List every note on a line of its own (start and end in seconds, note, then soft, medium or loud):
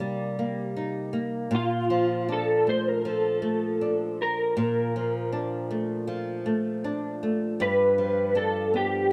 0.00 1.50 C3 medium
0.00 1.60 G3 medium
0.00 0.38 A#3 medium
0.00 0.75 D#4 medium
0.39 1.13 A#3 medium
0.77 1.60 D#4 medium
1.13 2.66 A#3 medium
1.51 4.55 A#2 medium
1.55 2.26 F4 medium
1.90 3.05 F3 medium
2.29 3.81 D4 medium
2.29 2.66 A4 medium
2.67 3.41 A3 medium
2.67 2.88 C5 loud
2.88 3.08 A#4 medium
3.05 4.95 F3 medium
3.05 4.21 A4 medium
3.42 4.18 A3 medium
3.81 5.32 D4 medium
4.22 5.30 A#4 medium
4.57 7.59 A#2 medium
4.96 6.07 F3 medium
5.32 6.84 D4 medium
5.71 6.45 A3 medium
6.07 7.98 F3 medium
6.46 7.21 A3 medium
6.84 8.35 D4 medium
7.23 7.68 A3 medium
7.60 9.12 G2 medium
7.60 8.37 B4 loud
7.98 9.10 F3 medium
8.35 9.12 D4 medium
8.35 8.71 A4 medium
8.74 9.12 B3 medium
8.74 9.12 G4 medium